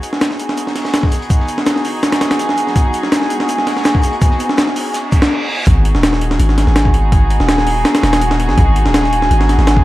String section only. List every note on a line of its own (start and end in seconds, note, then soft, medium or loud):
0.00 5.63 B3 medium
0.00 5.63 D#4 medium
0.00 5.63 F#4 medium
0.00 5.63 G#4 medium
5.67 9.84 B3 medium
5.67 9.84 D#4 medium
5.67 9.84 F#4 medium
5.67 9.84 G#4 medium